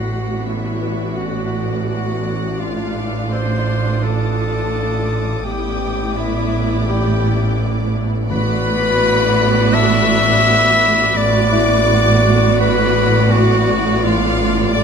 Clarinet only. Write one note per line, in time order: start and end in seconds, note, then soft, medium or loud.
0.00 0.47 F#4 medium
0.46 1.19 E4 medium
1.17 1.88 F#4 medium
1.89 2.62 F#4 medium
2.61 3.07 F4 medium
3.31 4.05 C5 medium
4.03 5.46 A4 medium
5.46 6.19 G4 medium
6.17 6.88 E4 medium
6.89 7.59 G4 medium
8.31 9.76 B4 loud
9.74 11.19 E5 loud
11.17 12.60 D5 loud
12.61 13.34 B4 loud
13.32 14.06 F#4 loud
14.04 14.74 F4 medium
14.74 14.84 D5 loud